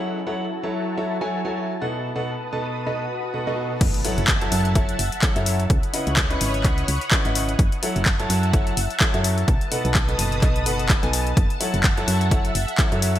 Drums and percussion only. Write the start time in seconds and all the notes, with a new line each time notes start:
3.81 kick, closed hi-hat, crash
3.94 closed hi-hat
4.05 open hi-hat
4.18 closed hi-hat
4.28 kick, clap, closed hi-hat
4.41 closed hi-hat
4.52 open hi-hat
4.65 closed hi-hat
4.75 kick, closed hi-hat
4.89 closed hi-hat
4.99 open hi-hat
5.12 closed hi-hat
5.22 kick, clap, closed hi-hat
5.36 closed hi-hat
5.46 open hi-hat
5.60 closed hi-hat
5.70 kick, closed hi-hat
5.83 closed hi-hat
5.94 open hi-hat
6.07 closed hi-hat
6.17 kick, clap, closed hi-hat
6.31 closed hi-hat
6.41 open hi-hat
6.54 closed hi-hat
6.64 kick, clap, closed hi-hat
6.78 closed hi-hat
6.88 open hi-hat
7.01 closed hi-hat
7.11 kick, clap, closed hi-hat
7.25 closed hi-hat
7.35 open hi-hat
7.49 closed hi-hat
7.59 kick, closed hi-hat
7.72 closed hi-hat
7.83 open hi-hat
7.96 closed hi-hat
8.06 kick, clap, closed hi-hat
8.20 closed hi-hat
8.30 open hi-hat
8.43 closed hi-hat
8.53 kick, closed hi-hat
8.67 closed hi-hat
8.77 open hi-hat
8.90 closed hi-hat
9.00 kick, clap, closed hi-hat
9.14 closed hi-hat
9.24 open hi-hat
9.38 closed hi-hat
9.48 kick, closed hi-hat
9.61 closed hi-hat
9.72 open hi-hat
9.85 closed hi-hat
9.95 kick, clap, closed hi-hat
10.09 closed hi-hat
10.19 open hi-hat
10.32 closed hi-hat
10.42 kick, clap, closed hi-hat
10.56 closed hi-hat
10.66 open hi-hat
10.79 closed hi-hat
10.89 kick, clap, closed hi-hat
11.03 closed hi-hat
11.13 open hi-hat
11.27 closed hi-hat
11.37 kick, closed hi-hat
11.50 closed hi-hat
11.61 open hi-hat
11.74 closed hi-hat
11.84 kick, clap, closed hi-hat
11.97 closed hi-hat
12.08 open hi-hat
12.21 closed hi-hat
12.31 kick, closed hi-hat
12.45 closed hi-hat
12.55 open hi-hat
12.68 closed hi-hat
12.78 kick, clap, closed hi-hat
12.92 closed hi-hat
13.02 open hi-hat
13.16 closed hi-hat